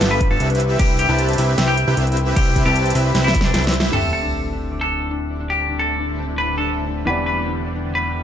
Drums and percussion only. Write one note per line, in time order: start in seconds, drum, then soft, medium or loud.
0.01 snare loud
0.01 closed hi-hat medium
0.21 kick loud
0.21 closed hi-hat medium
0.40 closed hi-hat medium
0.50 closed hi-hat soft
0.55 closed hi-hat medium
0.60 closed hi-hat medium
0.79 kick loud
0.79 closed hi-hat medium
0.79 crash medium
0.99 closed hi-hat medium
1.19 closed hi-hat medium
1.28 closed hi-hat soft
1.33 closed hi-hat medium
1.38 open hi-hat loud
1.58 snare loud
1.58 closed hi-hat medium
1.77 closed hi-hat medium
1.97 closed hi-hat medium
2.07 closed hi-hat soft
2.12 closed hi-hat medium
2.17 closed hi-hat medium
2.36 kick loud
2.36 closed hi-hat medium
2.36 crash medium
2.56 kick medium
2.56 closed hi-hat medium
2.76 closed hi-hat medium
2.85 closed hi-hat medium
2.90 closed hi-hat medium
2.95 open hi-hat loud
3.15 snare medium
3.15 closed hi-hat medium
3.28 snare medium
3.34 kick loud
3.34 closed hi-hat medium
3.41 snare medium
3.54 snare medium
3.54 closed hi-hat medium
3.64 snare loud
3.64 closed hi-hat soft
3.69 closed hi-hat medium
3.74 closed hi-hat medium
3.80 snare loud
3.93 crash medium